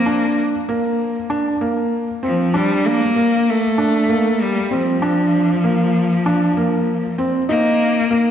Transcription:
0, 0, Header, 1, 3, 480
1, 0, Start_track
1, 0, Tempo, 618557
1, 58, Time_signature, 4, 2, 24, 8
1, 6447, End_track
2, 0, Start_track
2, 0, Title_t, "Felt piano"
2, 0, Program_c, 0, 0
2, 48, Note_on_c, 0, 62, 78
2, 404, Note_off_c, 0, 62, 0
2, 533, Note_on_c, 0, 58, 76
2, 887, Note_off_c, 0, 58, 0
2, 1008, Note_on_c, 0, 62, 79
2, 1188, Note_off_c, 0, 62, 0
2, 1251, Note_on_c, 0, 58, 70
2, 1606, Note_off_c, 0, 58, 0
2, 1729, Note_on_c, 0, 60, 69
2, 1909, Note_off_c, 0, 60, 0
2, 1971, Note_on_c, 0, 62, 80
2, 2326, Note_off_c, 0, 62, 0
2, 2453, Note_on_c, 0, 58, 80
2, 2807, Note_off_c, 0, 58, 0
2, 2935, Note_on_c, 0, 62, 80
2, 3112, Note_off_c, 0, 62, 0
2, 3174, Note_on_c, 0, 58, 68
2, 3528, Note_off_c, 0, 58, 0
2, 3655, Note_on_c, 0, 60, 75
2, 3832, Note_off_c, 0, 60, 0
2, 3896, Note_on_c, 0, 62, 80
2, 4249, Note_off_c, 0, 62, 0
2, 4377, Note_on_c, 0, 58, 72
2, 4730, Note_off_c, 0, 58, 0
2, 4858, Note_on_c, 0, 62, 79
2, 5034, Note_off_c, 0, 62, 0
2, 5099, Note_on_c, 0, 58, 69
2, 5451, Note_off_c, 0, 58, 0
2, 5574, Note_on_c, 0, 60, 70
2, 5752, Note_off_c, 0, 60, 0
2, 5812, Note_on_c, 0, 63, 85
2, 6166, Note_off_c, 0, 63, 0
2, 6292, Note_on_c, 0, 58, 78
2, 6447, Note_off_c, 0, 58, 0
2, 6447, End_track
3, 0, Start_track
3, 0, Title_t, "Cello"
3, 0, Program_c, 1, 42
3, 0, Note_on_c, 1, 58, 95
3, 293, Note_off_c, 1, 58, 0
3, 1745, Note_on_c, 1, 53, 84
3, 1983, Note_on_c, 1, 55, 91
3, 1994, Note_off_c, 1, 53, 0
3, 2225, Note_on_c, 1, 58, 103
3, 2237, Note_off_c, 1, 55, 0
3, 2706, Note_on_c, 1, 57, 101
3, 2717, Note_off_c, 1, 58, 0
3, 3432, Note_on_c, 1, 55, 91
3, 3443, Note_off_c, 1, 57, 0
3, 3672, Note_on_c, 1, 53, 82
3, 3684, Note_off_c, 1, 55, 0
3, 5585, Note_off_c, 1, 53, 0
3, 5813, Note_on_c, 1, 58, 100
3, 6447, Note_off_c, 1, 58, 0
3, 6447, End_track
0, 0, End_of_file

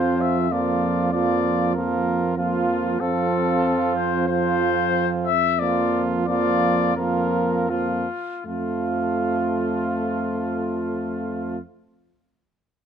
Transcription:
0, 0, Header, 1, 6, 480
1, 0, Start_track
1, 0, Key_signature, -1, "major"
1, 0, Tempo, 624350
1, 394, Time_signature, 4, 2, 24, 8
1, 2800, Tempo, 659341
1, 4720, Tempo, 710900
1, 5680, Tempo, 738916
1, 9027, End_track
2, 0, Start_track
2, 0, Title_t, "Trumpet"
2, 0, Program_c, 0, 56
2, 0, Note_on_c, 0, 72, 53
2, 161, Note_on_c, 0, 76, 60
2, 173, Note_off_c, 0, 72, 0
2, 401, Note_on_c, 0, 74, 57
2, 413, Note_off_c, 0, 76, 0
2, 862, Note_off_c, 0, 74, 0
2, 866, Note_on_c, 0, 74, 66
2, 1340, Note_off_c, 0, 74, 0
2, 1344, Note_on_c, 0, 70, 55
2, 1817, Note_off_c, 0, 70, 0
2, 1831, Note_on_c, 0, 65, 58
2, 2308, Note_on_c, 0, 69, 71
2, 2320, Note_off_c, 0, 65, 0
2, 3022, Note_off_c, 0, 69, 0
2, 3026, Note_on_c, 0, 72, 62
2, 3256, Note_off_c, 0, 72, 0
2, 3260, Note_on_c, 0, 72, 71
2, 3853, Note_off_c, 0, 72, 0
2, 3976, Note_on_c, 0, 76, 78
2, 4220, Note_on_c, 0, 74, 68
2, 4231, Note_off_c, 0, 76, 0
2, 4543, Note_off_c, 0, 74, 0
2, 4714, Note_on_c, 0, 74, 78
2, 5155, Note_off_c, 0, 74, 0
2, 5184, Note_on_c, 0, 70, 63
2, 5677, Note_on_c, 0, 65, 50
2, 5686, Note_off_c, 0, 70, 0
2, 6174, Note_off_c, 0, 65, 0
2, 6178, Note_on_c, 0, 65, 44
2, 8203, Note_off_c, 0, 65, 0
2, 9027, End_track
3, 0, Start_track
3, 0, Title_t, "Flugelhorn"
3, 0, Program_c, 1, 56
3, 0, Note_on_c, 1, 65, 46
3, 373, Note_off_c, 1, 65, 0
3, 388, Note_on_c, 1, 65, 45
3, 857, Note_off_c, 1, 65, 0
3, 873, Note_on_c, 1, 65, 45
3, 1343, Note_off_c, 1, 65, 0
3, 1359, Note_on_c, 1, 65, 47
3, 1824, Note_off_c, 1, 65, 0
3, 1832, Note_on_c, 1, 65, 46
3, 2301, Note_off_c, 1, 65, 0
3, 2311, Note_on_c, 1, 65, 51
3, 3250, Note_off_c, 1, 65, 0
3, 3271, Note_on_c, 1, 65, 54
3, 4002, Note_off_c, 1, 65, 0
3, 4237, Note_on_c, 1, 65, 53
3, 4694, Note_off_c, 1, 65, 0
3, 4728, Note_on_c, 1, 65, 53
3, 5180, Note_off_c, 1, 65, 0
3, 5193, Note_on_c, 1, 65, 48
3, 5674, Note_off_c, 1, 65, 0
3, 5689, Note_on_c, 1, 65, 39
3, 5793, Note_off_c, 1, 65, 0
3, 6177, Note_on_c, 1, 65, 38
3, 8201, Note_off_c, 1, 65, 0
3, 9027, End_track
4, 0, Start_track
4, 0, Title_t, "French horn"
4, 0, Program_c, 2, 60
4, 0, Note_on_c, 2, 60, 40
4, 377, Note_off_c, 2, 60, 0
4, 400, Note_on_c, 2, 58, 39
4, 863, Note_off_c, 2, 58, 0
4, 873, Note_on_c, 2, 58, 37
4, 1343, Note_off_c, 2, 58, 0
4, 1357, Note_on_c, 2, 58, 39
4, 1702, Note_off_c, 2, 58, 0
4, 1833, Note_on_c, 2, 58, 41
4, 2315, Note_on_c, 2, 60, 46
4, 2327, Note_off_c, 2, 58, 0
4, 3266, Note_off_c, 2, 60, 0
4, 3271, Note_on_c, 2, 60, 43
4, 4002, Note_off_c, 2, 60, 0
4, 4229, Note_on_c, 2, 58, 44
4, 4690, Note_off_c, 2, 58, 0
4, 4718, Note_on_c, 2, 58, 48
4, 5175, Note_off_c, 2, 58, 0
4, 5184, Note_on_c, 2, 58, 37
4, 5669, Note_off_c, 2, 58, 0
4, 5680, Note_on_c, 2, 58, 39
4, 5924, Note_off_c, 2, 58, 0
4, 6171, Note_on_c, 2, 57, 39
4, 8196, Note_off_c, 2, 57, 0
4, 9027, End_track
5, 0, Start_track
5, 0, Title_t, "Trombone"
5, 0, Program_c, 3, 57
5, 0, Note_on_c, 3, 53, 43
5, 373, Note_off_c, 3, 53, 0
5, 394, Note_on_c, 3, 53, 39
5, 860, Note_off_c, 3, 53, 0
5, 868, Note_on_c, 3, 53, 40
5, 1341, Note_off_c, 3, 53, 0
5, 1351, Note_on_c, 3, 53, 41
5, 1820, Note_off_c, 3, 53, 0
5, 1828, Note_on_c, 3, 53, 46
5, 2299, Note_off_c, 3, 53, 0
5, 2308, Note_on_c, 3, 53, 50
5, 3248, Note_off_c, 3, 53, 0
5, 3270, Note_on_c, 3, 53, 49
5, 4002, Note_off_c, 3, 53, 0
5, 4228, Note_on_c, 3, 53, 52
5, 4690, Note_off_c, 3, 53, 0
5, 4716, Note_on_c, 3, 53, 51
5, 5174, Note_off_c, 3, 53, 0
5, 5180, Note_on_c, 3, 53, 46
5, 5667, Note_off_c, 3, 53, 0
5, 5679, Note_on_c, 3, 53, 37
5, 5924, Note_off_c, 3, 53, 0
5, 6173, Note_on_c, 3, 53, 38
5, 8198, Note_off_c, 3, 53, 0
5, 9027, End_track
6, 0, Start_track
6, 0, Title_t, "Tuba"
6, 0, Program_c, 4, 58
6, 0, Note_on_c, 4, 41, 47
6, 2279, Note_off_c, 4, 41, 0
6, 2312, Note_on_c, 4, 41, 46
6, 5904, Note_off_c, 4, 41, 0
6, 6175, Note_on_c, 4, 41, 40
6, 8200, Note_off_c, 4, 41, 0
6, 9027, End_track
0, 0, End_of_file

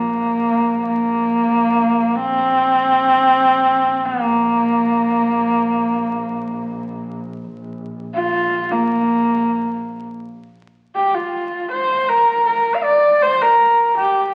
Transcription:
0, 0, Header, 1, 3, 480
1, 0, Start_track
1, 0, Tempo, 748130
1, 794, Time_signature, 4, 2, 24, 8
1, 9201, End_track
2, 0, Start_track
2, 0, Title_t, "Horsehead fiddle"
2, 0, Program_c, 0, 110
2, 0, Note_on_c, 0, 58, 83
2, 545, Note_off_c, 0, 58, 0
2, 549, Note_on_c, 0, 58, 91
2, 1382, Note_on_c, 0, 60, 116
2, 1392, Note_off_c, 0, 58, 0
2, 2600, Note_on_c, 0, 58, 92
2, 2610, Note_off_c, 0, 60, 0
2, 4612, Note_off_c, 0, 58, 0
2, 5222, Note_on_c, 0, 65, 107
2, 5588, Note_on_c, 0, 58, 96
2, 5598, Note_off_c, 0, 65, 0
2, 6458, Note_off_c, 0, 58, 0
2, 7026, Note_on_c, 0, 67, 85
2, 7148, Note_on_c, 0, 65, 84
2, 7158, Note_off_c, 0, 67, 0
2, 7510, Note_off_c, 0, 65, 0
2, 7514, Note_on_c, 0, 72, 96
2, 7755, Note_on_c, 0, 70, 92
2, 7764, Note_off_c, 0, 72, 0
2, 7988, Note_off_c, 0, 70, 0
2, 7992, Note_on_c, 0, 70, 87
2, 8180, Note_on_c, 0, 77, 79
2, 8189, Note_off_c, 0, 70, 0
2, 8234, Note_on_c, 0, 74, 92
2, 8243, Note_off_c, 0, 77, 0
2, 8481, Note_on_c, 0, 72, 111
2, 8490, Note_off_c, 0, 74, 0
2, 8607, Note_on_c, 0, 70, 95
2, 8616, Note_off_c, 0, 72, 0
2, 8959, Note_off_c, 0, 70, 0
2, 8966, Note_on_c, 0, 67, 88
2, 9182, Note_off_c, 0, 67, 0
2, 9201, End_track
3, 0, Start_track
3, 0, Title_t, "Double bass"
3, 0, Program_c, 1, 43
3, 0, Note_on_c, 1, 34, 62
3, 2706, Note_off_c, 1, 34, 0
3, 2710, Note_on_c, 1, 34, 69
3, 6604, Note_off_c, 1, 34, 0
3, 9201, End_track
0, 0, End_of_file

